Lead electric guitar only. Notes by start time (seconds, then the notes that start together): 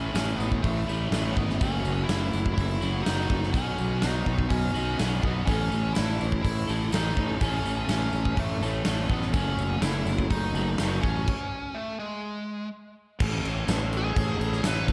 Already playing: C#4
0.14 C#4
0.36 B3
0.62 A3
1.33 B3
1.58 C#4
2.04 E4
2.54 E4
3.03 D#4
3.52 C#4
3.99 D#4
4.49 C#4
5.21 B3
5.45 C#4
5.94 E4
6.42 E4
6.92 D#4
7.41 C#4
7.89 C#4
8.39 A3
9.09 B3
9.33 C#4
9.82 E4
10.30 D#4
11.02 C#4
11.75 A3
11.99 G#3
13.97 G#4
14.67 B4